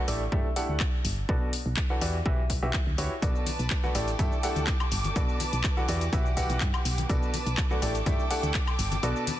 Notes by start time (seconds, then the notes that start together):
0.08 A1 A3 D4 E4 G4 A4 D5, open hi-hat
0.32 G2 A3 D4 E4 G4 A4 E5, kick
0.56 A3 D4 E4 G4 A4 F#5, open hi-hat
0.69 D2
0.80 kick, clap
1.05 G1, open hi-hat
1.29 B1 B2 D4 F#4 A4 B4 D5, kick
1.53 open hi-hat
1.66 B1
1.77 kick, clap
1.90 E3 D4 F#4 A4 B4 F#5
2.01 E2 E3 E4 F#4 G4 B4 D5, open hi-hat
2.26 B1 E3 E4 F#4 G4 B4 E5, kick
2.50 kick, open hi-hat
2.63 B1 E3 E4 F#4 G4 B4 E5
2.73 kick, clap
2.87 D2
2.98 D2 E4 F#4 G4 B4 C#5, open hi-hat
3.22 B1 B2 D4 F#4 A4 B4 D5 A5 D6, kick, closed hi-hat, tambourine, shaker
3.35 tambourine, shaker
3.46 open hi-hat, tambourine, high conga, shaker
3.59 B1, closed hi-hat, tambourine, shaker
3.70 kick, clap, closed hi-hat, tambourine, shaker
3.84 A3 D4 F#4 A4 B4 F#5, tambourine, high conga, shaker
3.95 A1 A3 D4 E4 G4 A4 D5 G5, open hi-hat, tambourine, shaker
4.08 closed hi-hat, tambourine, shaker
4.19 G2 A3 D4 E4 G4 A4 E5, kick, closed hi-hat, tambourine, high conga, shaker
4.32 tambourine, shaker
4.43 A3 D4 E4 G4 A4 F#5, open hi-hat, tambourine, shaker
4.56 D2, closed hi-hat, tambourine, high conga, shaker
4.67 kick, clap, closed hi-hat, tambourine, shaker
4.80 tambourine, high woodblock, shaker
4.91 G1, open hi-hat, tambourine, shaker
5.04 closed hi-hat, tambourine, high conga, shaker
5.16 B1 B2 D4 F#4 A4 B4 D5 A5, kick, closed hi-hat, tambourine, shaker
5.29 tambourine, shaker
5.40 open hi-hat, tambourine, high conga, shaker
5.52 B1, closed hi-hat, tambourine, shaker
5.64 kick, clap, closed hi-hat, tambourine, shaker
5.77 E3 D4 F#4 A4 B4 F#5, tambourine, high conga, shaker
5.88 E2 E3 E4 F#4 G4 B4 D5 F#5, open hi-hat, tambourine, shaker
6.01 closed hi-hat, tambourine, shaker
6.13 B1 E3 E4 F#4 G4 B4 E5, kick, closed hi-hat, tambourine, high conga, shaker
6.25 tambourine, shaker
6.37 E3 E4 F#4 G4 B4 F#5, kick, open hi-hat, tambourine, shaker
6.49 B1, closed hi-hat, tambourine, high conga, shaker
6.61 G2, kick, clap, closed hi-hat, tambourine, shaker
6.74 tambourine, high woodblock, shaker
6.85 B1, open hi-hat, tambourine, shaker
6.97 closed hi-hat, tambourine, high conga, shaker
7.09 B1 B2 D4 F#4 A4 B4 D5 A5 D6, kick, closed hi-hat, tambourine, shaker
7.22 tambourine, shaker
7.34 open hi-hat, tambourine, high conga, shaker
7.46 B1, closed hi-hat, tambourine, shaker
7.57 kick, clap, closed hi-hat, tambourine, shaker
7.70 A3 D4 F#4 A4 B4 F#5, tambourine, high conga, shaker
7.82 A1 A3 D4 E4 G4 A4 D5 G5, open hi-hat, tambourine, shaker
7.95 closed hi-hat, tambourine, shaker
8.06 G2 A3 D4 E4 G4 A4 E5, kick, closed hi-hat, tambourine, high conga, shaker
8.19 tambourine, shaker
8.30 A3 D4 E4 G4 A4 F#5, open hi-hat, tambourine, shaker
8.43 D2, closed hi-hat, tambourine, high conga, shaker
8.54 kick, clap, closed hi-hat, tambourine, shaker
8.67 tambourine, high woodblock, shaker
8.79 G1, open hi-hat, tambourine, shaker
8.92 closed hi-hat, tambourine, high conga, shaker
9.02 B1 B2 D4 F#4 A4 B4 D5 A5, closed hi-hat, tambourine, shaker
9.16 tambourine, shaker
9.27 open hi-hat, tambourine, high conga, shaker